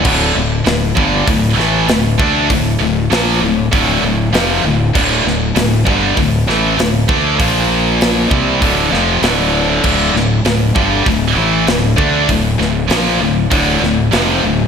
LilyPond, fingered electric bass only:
\new Staff \with { instrumentName = "Fingered electric bass" } { \clef bass \time 4/4 \key d \minor \tempo 4 = 98 d,,8 d,,8 d,,8 g,,8 d,,8 a,,8 d,,8 d,8 | d,,8 d,,8 bes,,8 d,,8 d,,8 d,,8 f,,8 d,,8 | d,,8 d,,8 d,,8 g,,8 d,,8 a,,8 d,,8 d,8 | bes,,4. c,8 d,,8 f,,8 d,,4 |
d,,8 d,,8 d,,8 g,,8 d,,8 a,,8 d,,8 d,8 | d,,8 d,,8 bes,,8 d,,8 d,,8 d,,8 f,,8 d,,8 | }